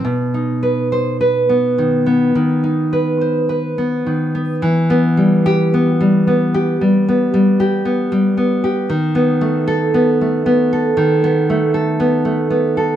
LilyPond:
\new Staff \with { instrumentName = "Nylon-string guitar" } { \time 4/4 \key e \minor \tempo 4 = 56 << { r8. c''16 r2. | r8. g'8 r2 r8. | r8. a'8 r2 r8. | } \\ { b,16 dis'16 b'8 b'16 b16 dis16 b16 dis16 dis'16 b'16 c''16 b'16 b16 dis16 b16 | e16 b16 g8 b16 g16 b16 g'16 g16 b16 g16 g'16 b16 g16 b16 g'16 | dis16 b16 a8 b16 a16 b16 a'16 dis16 b16 a16 a'16 b16 a16 b16 a'16 | } >> }